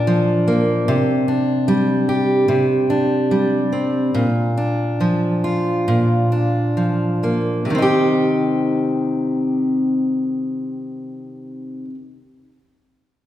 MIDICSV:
0, 0, Header, 1, 2, 480
1, 0, Start_track
1, 0, Key_signature, -3, "minor"
1, 0, Tempo, 808625
1, 517, Time_signature, 4, 2, 24, 8
1, 1962, Tempo, 854701
1, 3402, Tempo, 914634
1, 4362, Tempo, 944882
1, 7189, End_track
2, 0, Start_track
2, 0, Title_t, "Steel-string acoustic guitar"
2, 0, Program_c, 0, 25
2, 0, Note_on_c, 0, 46, 68
2, 0, Note_on_c, 0, 62, 49
2, 0, Note_on_c, 0, 70, 59
2, 43, Note_on_c, 0, 53, 54
2, 282, Note_on_c, 0, 58, 51
2, 516, Note_off_c, 0, 46, 0
2, 523, Note_on_c, 0, 48, 71
2, 575, Note_off_c, 0, 53, 0
2, 576, Note_off_c, 0, 58, 0
2, 576, Note_off_c, 0, 70, 0
2, 758, Note_off_c, 0, 62, 0
2, 760, Note_on_c, 0, 62, 51
2, 997, Note_on_c, 0, 55, 55
2, 1239, Note_on_c, 0, 67, 56
2, 1467, Note_off_c, 0, 48, 0
2, 1474, Note_on_c, 0, 48, 69
2, 1718, Note_off_c, 0, 62, 0
2, 1721, Note_on_c, 0, 62, 48
2, 1959, Note_off_c, 0, 55, 0
2, 1966, Note_on_c, 0, 55, 49
2, 2198, Note_on_c, 0, 60, 47
2, 2431, Note_off_c, 0, 48, 0
2, 2434, Note_on_c, 0, 46, 65
2, 2490, Note_off_c, 0, 55, 0
2, 2490, Note_off_c, 0, 60, 0
2, 2491, Note_off_c, 0, 67, 0
2, 2672, Note_off_c, 0, 62, 0
2, 2675, Note_on_c, 0, 62, 48
2, 2917, Note_on_c, 0, 53, 53
2, 3161, Note_on_c, 0, 65, 52
2, 3400, Note_off_c, 0, 46, 0
2, 3406, Note_on_c, 0, 46, 65
2, 3632, Note_off_c, 0, 62, 0
2, 3638, Note_on_c, 0, 62, 46
2, 3868, Note_off_c, 0, 53, 0
2, 3874, Note_on_c, 0, 53, 47
2, 4118, Note_on_c, 0, 58, 44
2, 4335, Note_off_c, 0, 46, 0
2, 4337, Note_on_c, 0, 48, 60
2, 4361, Note_off_c, 0, 53, 0
2, 4363, Note_on_c, 0, 51, 60
2, 4385, Note_off_c, 0, 58, 0
2, 4387, Note_on_c, 0, 60, 68
2, 4403, Note_off_c, 0, 62, 0
2, 4405, Note_on_c, 0, 63, 61
2, 4422, Note_off_c, 0, 65, 0
2, 4425, Note_on_c, 0, 67, 70
2, 6468, Note_off_c, 0, 48, 0
2, 6494, Note_off_c, 0, 51, 0
2, 6517, Note_off_c, 0, 60, 0
2, 6536, Note_off_c, 0, 63, 0
2, 6555, Note_off_c, 0, 67, 0
2, 7189, End_track
0, 0, End_of_file